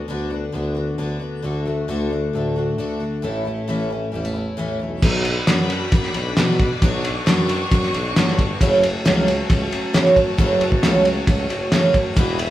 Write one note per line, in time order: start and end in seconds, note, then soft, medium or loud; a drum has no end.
0.00 0.52 D2 medium
0.00 0.52 B3 soft
0.00 0.31 D4 soft
0.00 0.75 F#4 medium
0.08 0.47 D2 medium
0.08 0.31 D3 medium
0.08 0.31 B3 medium
0.08 0.31 D4 medium
0.08 0.29 F#4 medium
0.30 0.52 B3 soft
0.30 0.53 D4 soft
0.30 0.53 F#4 soft
0.52 1.42 D2 medium
0.52 0.92 D2 medium
0.52 0.75 D3 medium
0.52 0.76 B3 medium
0.52 0.75 D4 medium
0.52 0.74 F#4 medium
0.75 0.97 B3 soft
0.75 0.98 D4 soft
0.75 0.98 F#4 soft
0.98 1.17 D2 medium
0.98 1.21 D3 medium
0.98 1.21 B3 medium
0.98 1.20 D4 medium
0.98 1.18 F#4 medium
1.19 1.43 B3 soft
1.19 1.43 D4 soft
1.19 1.43 F#4 soft
1.42 3.23 D2 medium
1.42 1.82 D2 medium
1.42 1.65 D3 medium
1.42 1.66 A3 medium
1.42 1.66 D4 medium
1.42 1.64 F#4 medium
1.65 1.87 A3 soft
1.65 1.88 D4 medium
1.65 1.88 F#4 medium
1.88 2.27 D2 medium
1.88 2.11 D3 medium
1.88 2.11 A3 medium
1.88 2.11 D4 medium
1.88 2.09 F#4 medium
2.10 2.34 A3 soft
2.10 2.34 D4 soft
2.10 2.33 F#4 medium
2.33 2.71 D2 medium
2.33 2.78 A2 medium
2.33 2.56 D3 medium
2.33 2.56 A3 medium
2.33 2.56 D4 medium
2.33 2.55 F#4 medium
2.56 2.78 A3 soft
2.56 2.79 D4 soft
2.56 2.78 F#4 soft
2.78 2.97 D2 medium
2.78 3.01 D3 medium
2.78 3.01 A3 medium
2.78 3.00 D4 medium
2.78 2.99 F#4 medium
3.00 3.22 A3 soft
3.00 3.23 D4 soft
3.00 3.23 F#4 soft
3.22 3.61 A1 medium
3.22 3.45 A2 medium
3.22 3.45 E3 medium
3.22 3.46 A3 medium
3.22 3.46 C#4 medium
3.22 3.44 E4 medium
3.45 3.68 A3 soft
3.45 3.68 C#4 soft
3.45 3.68 E4 soft
3.68 4.06 A1 medium
3.68 3.90 A2 medium
3.68 3.91 E3 medium
3.68 3.91 A3 medium
3.68 3.91 C#4 medium
3.68 3.89 E4 medium
3.90 4.12 A3 soft
3.90 4.80 C#4 soft
3.90 4.13 E4 soft
4.12 4.51 A1 medium
4.12 5.00 E2 medium
4.12 4.35 E3 medium
4.12 4.25 G3 medium
4.12 4.35 A3 medium
4.12 4.35 C#4 medium
4.12 4.33 E4 medium
4.25 5.03 A3 soft
4.34 4.57 A3 soft
4.34 4.58 C#4 soft
4.34 4.57 E4 soft
4.57 4.78 A1 medium
4.57 4.80 A2 medium
4.57 4.80 E3 medium
4.57 4.80 A3 medium
4.57 4.80 C#4 medium
4.57 4.78 E4 medium
4.79 5.01 B1 medium
4.79 5.03 A3 soft
4.79 5.03 C#4 soft
4.79 5.02 E4 soft
5.02 5.40 B1 loud
5.02 5.25 B2 medium
5.02 5.25 F#3 medium
5.02 5.25 B3 medium
5.02 5.25 D4 medium
5.02 8.57 F#4 medium
5.02 5.23 F#4 loud
5.02 8.57 D5 medium
5.02 6.80 B5 medium
5.02 kick loud
5.02 crash loud
5.24 5.47 B3 medium
5.24 5.48 D4 medium
5.24 5.47 F#4 medium
5.24 ride medium
5.47 5.85 F#2 loud
5.47 5.70 B2 medium
5.47 5.70 F#3 medium
5.47 5.70 B3 loud
5.47 5.71 D4 medium
5.47 5.68 F#4 loud
5.47 snare loud
5.47 ride medium
5.70 5.92 B3 medium
5.70 5.93 D4 medium
5.70 5.92 F#4 medium
5.70 ride medium
5.92 6.11 F#2 loud
5.92 6.15 F#3 medium
5.92 6.15 B3 medium
5.92 6.15 D4 medium
5.92 6.14 F#4 medium
5.92 kick loud
5.92 ride medium
6.03 snare soft
6.14 6.34 B1 medium
6.14 6.38 B3 soft
6.14 6.38 D4 medium
6.14 6.37 F#4 medium
6.14 ride medium
6.37 6.75 B2 loud
6.37 6.60 B2 medium
6.37 6.60 F#3 loud
6.37 6.60 B3 loud
6.37 6.60 D4 loud
6.37 6.58 F#4 loud
6.37 snare loud
6.37 ride medium
6.59 6.82 B3 soft
6.59 6.83 D4 medium
6.59 6.82 F#4 medium
6.59 kick medium
6.59 ride medium
6.81 7.20 B1 loud
6.81 7.04 B2 medium
6.81 7.04 F#3 medium
6.81 7.05 B3 medium
6.81 7.05 D4 loud
6.81 7.03 F#4 loud
6.81 8.58 C#6 medium
6.81 kick loud
6.81 ride medium
7.04 7.26 B3 medium
7.04 7.27 D4 medium
7.04 7.26 F#4 medium
7.04 ride medium
7.26 7.65 F#2 loud
7.26 7.49 B2 loud
7.26 7.49 F#3 loud
7.26 7.49 B3 loud
7.26 7.49 D4 loud
7.26 7.47 F#4 loud
7.26 snare loud
7.26 ride loud
7.48 7.71 B3 medium
7.48 7.72 D4 medium
7.48 7.71 F#4 medium
7.48 ride medium
7.71 7.90 F#2 loud
7.71 7.94 F#3 medium
7.71 7.94 B3 medium
7.71 7.94 D4 medium
7.71 7.92 F#4 medium
7.71 kick loud
7.71 ride loud
7.83 snare soft
7.93 8.12 B1 loud
7.93 8.16 B3 medium
7.93 8.16 D4 medium
7.93 8.15 F#4 medium
7.93 ride medium
8.16 8.54 G1 medium
8.16 8.38 B2 medium
8.16 8.39 F#3 loud
8.16 8.39 B3 loud
8.16 8.38 D4 loud
8.16 8.37 F#4 medium
8.16 snare loud
8.16 ride loud
8.28 snare soft
8.38 8.61 B3 medium
8.38 8.61 D4 medium
8.38 8.60 F#4 medium
8.38 kick medium
8.38 ride medium
8.60 8.99 F#1 loud
8.60 8.83 F#2 medium
8.60 8.83 C#3 loud
8.60 8.84 F#3 medium
8.60 8.83 A3 loud
8.60 8.83 C#4 loud
8.60 12.50 F#4 medium
8.60 8.81 F#4 loud
8.60 12.14 C#5 medium
8.60 12.14 A5 medium
8.60 kick loud
8.60 ride loud
8.82 9.05 A3 medium
8.82 9.06 C#4 medium
8.82 9.05 F#4 medium
8.82 ride medium
9.05 9.43 C#2 loud
9.05 9.27 F#2 medium
9.05 9.28 C#3 medium
9.05 9.28 F#3 loud
9.05 9.28 A3 loud
9.05 9.27 C#4 loud
9.05 9.26 F#4 loud
9.05 snare loud
9.05 ride medium
9.27 9.48 F#3 medium
9.27 9.49 A3 medium
9.27 9.50 C#4 medium
9.27 9.49 F#4 medium
9.27 ride medium
9.49 9.69 C#2 loud
9.49 9.72 F#3 medium
9.49 9.72 A3 medium
9.49 9.71 C#4 medium
9.49 9.70 F#4 medium
9.49 kick loud
9.49 ride medium
9.71 9.93 F#3 medium
9.71 9.94 A3 medium
9.71 9.94 C#4 medium
9.71 9.94 F#4 medium
9.71 ride medium
9.94 10.16 F#2 medium
9.94 10.32 F#2 medium
9.94 10.17 C#3 medium
9.94 10.17 F#3 medium
9.94 10.16 A3 loud
9.94 10.15 C#4 loud
9.94 10.13 F#4 loud
9.94 snare loud
9.94 ride medium
10.06 snare soft
10.15 10.38 F#3 soft
10.15 10.38 A3 medium
10.15 10.39 C#4 medium
10.15 10.38 F#4 medium
10.15 kick medium
10.15 ride medium
10.38 10.76 F#1 loud
10.38 10.61 F#2 medium
10.38 10.61 C#3 medium
10.38 10.61 F#3 loud
10.38 10.61 A3 loud
10.38 10.61 C#4 loud
10.38 10.59 F#4 loud
10.38 kick loud
10.38 ride medium
10.61 10.84 F#3 medium
10.61 10.84 A3 medium
10.61 10.84 C#4 medium
10.61 10.83 F#4 medium
10.61 ride medium
10.72 kick medium
10.83 11.21 C#2 loud
10.83 11.06 F#2 medium
10.83 11.06 C#3 medium
10.83 11.06 F#3 loud
10.83 11.07 A3 loud
10.83 11.06 C#4 loud
10.83 11.04 F#4 medium
10.83 snare loud
10.83 ride medium
11.05 11.26 F#3 medium
11.05 11.27 A3 medium
11.05 11.28 C#4 medium
11.05 11.28 F#4 medium
11.05 ride medium
11.27 11.46 C#2 loud
11.27 11.50 F#3 medium
11.27 11.50 A3 medium
11.27 11.49 C#4 medium
11.27 11.48 F#4 medium
11.27 kick loud
11.27 ride loud
11.49 11.69 F#1 medium
11.49 11.72 F#3 soft
11.49 11.73 A3 medium
11.49 11.73 C#4 medium
11.49 11.72 F#4 medium
11.49 ride medium
11.72 12.10 F#2 medium
11.72 11.95 F#2 medium
11.72 11.95 C#3 loud
11.72 11.95 F#3 medium
11.72 11.96 A3 medium
11.72 11.95 C#4 loud
11.72 11.93 F#4 loud
11.72 snare loud
11.72 ride loud
11.94 12.17 F#3 medium
11.94 12.17 A3 medium
11.94 12.17 C#4 medium
11.94 12.17 F#4 medium
11.94 kick medium
11.94 ride medium
12.16 12.50 E1 loud
12.16 12.39 E2 medium
12.16 12.39 B2 medium
12.16 12.39 E3 loud
12.16 12.39 B3 loud
12.16 12.39 E4 medium
12.16 12.37 F#4 loud
12.16 12.50 E5 medium
12.16 12.50 B5 medium
12.16 kick loud
12.16 ride loud
12.38 12.50 E3 soft
12.38 12.50 B3 medium
12.38 12.50 E4 medium
12.38 12.50 F#4 medium
12.38 ride medium